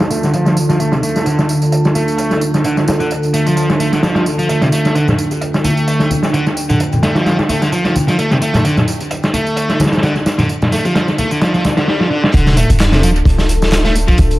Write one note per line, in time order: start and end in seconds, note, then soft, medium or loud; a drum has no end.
0.00 11.84 D3 medium
0.00 11.84 D4 medium
0.00 11.84 F4 medium
0.00 11.84 A4 medium
0.00 4.91 A5 medium
0.00 snare medium
0.00 tambourine soft
0.00 downlifter medium
0.11 0.22 A3 medium
0.11 closed hi-hat medium
0.11 tambourine medium
0.23 0.32 D3 medium
0.23 snare soft
0.23 tambourine soft
0.33 0.45 F3 medium
0.33 closed hi-hat medium
0.33 tambourine soft
0.46 0.55 F3 medium
0.46 snare soft
0.46 tambourine soft
0.56 closed hi-hat medium
0.56 tambourine medium
0.69 0.79 F3 medium
0.69 snare soft
0.69 tambourine soft
0.79 0.92 A3 medium
0.79 closed hi-hat medium
0.79 tambourine soft
0.92 0.98 C3 medium
0.92 snare soft
0.92 tambourine soft
1.02 1.25 A3 medium
1.02 closed hi-hat medium
1.02 tambourine medium
1.16 snare soft
1.16 tambourine soft
1.26 1.37 D3 medium
1.26 closed hi-hat medium
1.26 tambourine soft
1.39 snare soft
1.39 tambourine soft
1.49 closed hi-hat medium
1.49 tambourine medium
1.62 closed hi-hat soft
1.62 tambourine soft
1.72 closed hi-hat medium
1.72 tambourine soft
1.85 snare soft
1.85 tambourine soft
1.95 2.40 A3 medium
1.95 closed hi-hat medium
1.95 tambourine medium
2.08 tambourine soft
2.17 closed hi-hat medium
2.17 tambourine soft
2.31 snare soft
2.31 tambourine soft
2.41 closed hi-hat medium
2.41 tambourine medium
2.54 snare soft
2.54 tambourine soft
2.64 2.75 D3 medium
2.64 closed hi-hat medium
2.64 tambourine soft
2.77 snare soft
2.77 tambourine soft
2.88 snare medium
2.88 closed hi-hat medium
2.88 tambourine medium
3.00 3.09 D3 medium
3.00 tambourine soft
3.11 closed hi-hat medium
3.11 tambourine soft
3.23 closed hi-hat soft
3.23 tambourine soft
3.33 3.46 A3 medium
3.33 closed hi-hat medium
3.33 tambourine medium
3.46 3.55 F3 medium
3.46 tambourine soft
3.57 3.68 F3 medium
3.57 open hi-hat medium
3.57 tambourine soft
3.70 snare soft
3.70 tambourine soft
3.79 3.91 A3 medium
3.79 closed hi-hat medium
3.79 tambourine medium
3.92 4.02 D3 medium
3.92 snare soft
3.92 tambourine soft
4.03 4.14 F3 medium
4.03 snare medium
4.03 closed hi-hat medium
4.03 tambourine soft
4.15 4.25 F3 medium
4.15 snare medium
4.15 closed hi-hat medium
4.15 tambourine soft
4.26 closed hi-hat medium
4.26 tambourine medium
4.39 4.48 F3 medium
4.39 tambourine soft
4.49 4.61 A3 medium
4.49 closed hi-hat medium
4.49 tambourine soft
4.61 4.67 C3 medium
4.61 snare soft
4.61 tambourine soft
4.72 4.94 A3 medium
4.72 closed hi-hat medium
4.72 tambourine medium
4.85 snare soft
4.85 tambourine soft
4.95 5.06 D3 medium
4.95 11.84 G5 medium
4.95 closed hi-hat medium
4.95 tambourine soft
5.08 snare soft
5.08 tambourine soft
5.08 low conga medium
5.18 closed hi-hat medium
5.18 tambourine medium
5.31 closed hi-hat soft
5.31 tambourine soft
5.31 high bongo soft
5.41 closed hi-hat medium
5.41 tambourine soft
5.54 snare soft
5.54 tambourine soft
5.64 6.10 A3 medium
5.64 closed hi-hat medium
5.64 tambourine medium
5.64 high conga medium
5.77 tambourine soft
5.87 closed hi-hat medium
5.87 tambourine soft
6.00 snare soft
6.00 tambourine soft
6.11 closed hi-hat medium
6.11 tambourine medium
6.11 high conga medium
6.23 snare soft
6.23 tambourine soft
6.33 6.45 D3 medium
6.33 closed hi-hat medium
6.33 tambourine soft
6.46 snare soft
6.46 tambourine soft
6.57 closed hi-hat medium
6.57 tambourine medium
6.69 6.79 D3 medium
6.69 tambourine soft
6.69 low conga medium
6.80 closed hi-hat medium
6.80 tambourine soft
6.92 closed hi-hat soft
6.92 tambourine soft
6.92 low conga medium
7.03 7.15 A3 medium
7.03 snare medium
7.03 closed hi-hat medium
7.03 tambourine medium
7.14 7.25 F3 medium
7.14 snare loud
7.14 closed hi-hat medium
7.14 tambourine soft
7.14 high bongo soft
7.26 7.37 F3 medium
7.26 snare medium
7.26 closed hi-hat medium
7.26 tambourine soft
7.39 snare medium
7.39 closed hi-hat medium
7.39 tambourine soft
7.49 7.61 A3 medium
7.49 closed hi-hat medium
7.49 tambourine medium
7.49 high conga medium
7.62 7.71 D3 medium
7.62 snare soft
7.62 tambourine soft
7.72 7.84 F3 medium
7.72 closed hi-hat medium
7.72 tambourine soft
7.85 7.94 F3 medium
7.85 snare soft
7.85 tambourine soft
7.96 closed hi-hat medium
7.96 tambourine medium
7.96 high conga medium
8.08 8.17 F3 medium
8.08 snare soft
8.08 tambourine soft
8.18 8.30 A3 medium
8.18 closed hi-hat medium
8.18 tambourine soft
8.31 8.37 C3 medium
8.31 snare soft
8.31 tambourine soft
8.41 8.64 A3 medium
8.41 closed hi-hat medium
8.41 tambourine medium
8.54 snare soft
8.54 tambourine soft
8.54 low conga medium
8.64 8.75 D3 medium
8.64 closed hi-hat medium
8.64 tambourine soft
8.77 snare soft
8.77 tambourine soft
8.77 low conga medium
8.88 closed hi-hat medium
8.88 tambourine medium
9.00 closed hi-hat soft
9.00 tambourine soft
9.00 high bongo soft
9.11 closed hi-hat medium
9.11 tambourine soft
9.23 snare soft
9.23 tambourine soft
9.34 9.79 A3 medium
9.34 closed hi-hat medium
9.34 tambourine medium
9.34 high conga medium
9.47 tambourine soft
9.56 closed hi-hat medium
9.56 tambourine soft
9.69 snare soft
9.69 tambourine soft
9.80 snare medium
9.80 closed hi-hat medium
9.80 tambourine medium
9.80 high conga medium
9.86 snare medium
9.86 closed hi-hat medium
9.92 snare medium
9.92 closed hi-hat medium
9.92 tambourine soft
9.97 snare medium
9.97 closed hi-hat medium
10.03 10.14 D3 medium
10.03 snare loud
10.03 closed hi-hat medium
10.03 tambourine soft
10.15 snare soft
10.15 tambourine soft
10.26 snare medium
10.26 closed hi-hat medium
10.26 tambourine medium
10.38 10.48 D3 medium
10.38 snare soft
10.38 tambourine soft
10.38 low conga medium
10.49 closed hi-hat medium
10.49 tambourine soft
10.62 snare medium
10.62 closed hi-hat medium
10.62 tambourine soft
10.62 low conga medium
10.72 10.84 A3 medium
10.72 snare soft
10.72 tambourine medium
10.85 10.94 F3 medium
10.85 closed hi-hat medium
10.85 tambourine soft
10.85 high bongo medium
10.95 11.06 F3 medium
10.95 snare medium
10.95 closed hi-hat medium
10.95 tambourine soft
11.08 snare soft
11.08 tambourine soft
11.18 11.30 A3 medium
11.18 closed hi-hat medium
11.18 tambourine medium
11.18 high conga medium
11.31 11.40 D3 medium
11.31 closed hi-hat soft
11.31 tambourine soft
11.41 11.53 F3 medium
11.41 snare loud
11.41 open hi-hat medium
11.41 tambourine soft
11.41 swell medium
11.54 11.63 F3 medium
11.54 snare soft
11.54 tambourine soft
11.64 snare medium
11.64 closed hi-hat medium
11.64 tambourine medium
11.64 high conga medium
11.77 11.87 D3 medium
11.77 snare loud
11.77 closed hi-hat medium
11.77 tambourine soft
11.88 12.00 G3 medium
11.88 snare medium
12.00 12.10 F3 medium
12.00 snare medium
12.11 12.23 D3 loud
12.24 snare medium
12.34 12.63 D1 loud
12.34 12.56 D3 loud
12.34 14.39 D4 medium
12.34 14.39 F4 medium
12.34 14.39 A4 medium
12.34 kick loud
12.34 closed hi-hat medium
12.34 tambourine soft
12.34 sub drop medium
12.46 snare soft
12.46 tambourine soft
12.57 12.69 A3 medium
12.57 closed hi-hat medium
12.57 tambourine medium
12.69 13.21 D1 loud
12.69 closed hi-hat soft
12.69 tambourine soft
12.80 snare loud
12.80 clap loud
12.80 closed hi-hat medium
12.80 tambourine soft
12.92 13.02 C3 loud
12.92 snare medium
12.92 tambourine soft
13.03 13.09 F3 loud
13.03 closed hi-hat medium
13.03 tambourine medium
13.16 tambourine soft
13.25 14.13 D1 medium
13.25 kick loud
13.25 closed hi-hat medium
13.25 tambourine soft
13.38 snare soft
13.38 tambourine soft
13.49 closed hi-hat medium
13.49 tambourine medium
13.62 snare soft
13.62 tambourine soft
13.72 snare loud
13.72 clap loud
13.72 closed hi-hat medium
13.72 tambourine soft
13.85 13.94 A3 loud
13.85 snare soft
13.85 tambourine soft
13.95 closed hi-hat medium
13.95 tambourine medium
14.08 14.17 F3 medium
14.08 kick medium
14.08 tambourine soft
14.18 14.39 D1 loud
14.18 kick loud
14.18 closed hi-hat medium
14.18 tambourine soft
14.31 closed hi-hat soft
14.31 tambourine soft